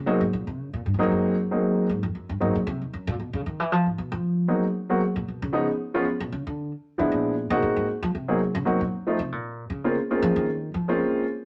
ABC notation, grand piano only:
X:1
M:4/4
L:1/8
Q:"Swing" 1/4=230
K:Abmix
V:1 name="Grand piano"
[G,A,B,CE] z6 [G,A,B,CE]- | [G,A,B,CE]2 z [G,A,B,CE]3 z2 | z2 [G,A,B,CE] z4 z | z8 |
z2 [G,A,B,CE] z2 [G,A,B,CG] z2 | z2 [F,A,_CDE] z2 [F,A,CDF] z2 | z4 z [F,A,=B,=D_F]3 | z [A,B,CEG]3 z3 [G,B,CEA] |
z2 [G,B,CEG] z2 [F,=A,CEF] z2 | z3 [A,B,CDF] z [A,B,CDF]3 | z3 [A,B,CDF]3 z2 |]